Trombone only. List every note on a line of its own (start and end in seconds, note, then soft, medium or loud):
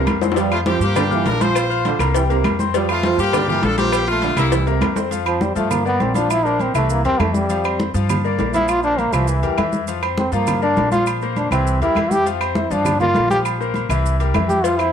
5.27 5.43 F3 medium
5.41 5.56 G3 medium
5.56 5.72 A3 medium
5.71 5.86 A#3 medium
5.86 6.03 B3 loud
6.01 6.15 C4 medium
6.16 6.33 D4 medium
6.31 6.47 E4 loud
6.45 6.63 D4 medium
6.61 6.75 C4 medium
6.76 6.92 A3 medium
6.91 7.05 A#3 medium
7.05 7.22 C4 loud
7.20 7.37 A3 medium
7.35 7.80 G3 medium
8.54 8.71 E4 loud
8.70 8.83 F4 loud
8.84 9.01 D4 loud
8.99 9.15 A#3 medium
9.14 9.30 F3 medium
9.29 9.73 E3 medium
10.18 10.32 C4 medium
10.33 10.61 A#3 medium
10.63 10.91 D4 loud
10.92 11.06 F4 loud
11.37 11.51 D4 medium
11.52 11.80 C4 medium
11.82 12.13 E4 loud
12.12 12.26 G4 loud
12.57 12.73 E4 medium
12.71 13.00 D4 loud
13.00 13.28 F4 loud
13.30 13.39 G4 loud
14.49 14.66 G4 loud
14.64 14.81 F4 loud
14.79 14.92 E4 loud